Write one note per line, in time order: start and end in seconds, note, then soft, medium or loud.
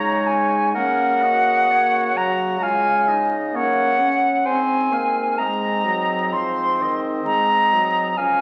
0.00 0.70 C#3 medium
0.00 0.76 G#3 medium
0.00 0.75 D#4 medium
0.00 0.74 C#5 medium
0.00 0.28 A#5 loud
0.27 0.73 G#5 medium
0.73 4.16 C#3 medium
0.73 1.68 A#3 medium
0.73 1.25 C#4 medium
0.73 1.24 A#4 medium
0.73 2.18 F#5 loud
1.22 2.64 F#4 medium
1.22 1.73 D#5 medium
1.69 2.14 A#3 medium
1.69 2.19 C#5 medium
2.15 2.61 F#3 medium
2.15 2.63 F#5 medium
2.15 2.64 A#5 medium
2.59 3.26 G#3 medium
2.59 3.09 F4 medium
2.59 3.28 G#5 loud
2.63 3.10 F5 medium
3.08 3.56 D#4 medium
3.08 3.57 D#5 medium
3.53 4.01 A#3 medium
3.53 4.20 C#4 medium
3.53 4.21 C#5 medium
3.53 4.47 F#5 loud
4.00 4.48 C#4 medium
4.45 8.12 G#2 medium
4.45 4.93 C4 medium
4.45 5.35 C4 medium
4.45 4.95 C5 medium
4.45 5.39 G#5 loud
4.91 5.40 A#3 medium
4.91 5.42 F5 medium
5.38 5.86 G#3 medium
5.38 8.13 C4 medium
5.38 6.36 D#5 medium
5.38 6.34 A#5 loud
5.85 6.33 F#3 medium
6.32 6.82 F3 medium
6.32 6.84 C5 medium
6.32 7.00 C6 loud
6.80 7.25 D#3 medium
6.80 8.17 D#5 medium
7.25 7.75 G#3 medium
7.25 8.19 A#5 loud
7.73 8.18 F#3 medium
8.16 8.41 C#2 medium
8.16 8.41 F3 medium
8.16 8.41 C#4 medium
8.16 8.41 F5 medium
8.16 8.41 G#5 loud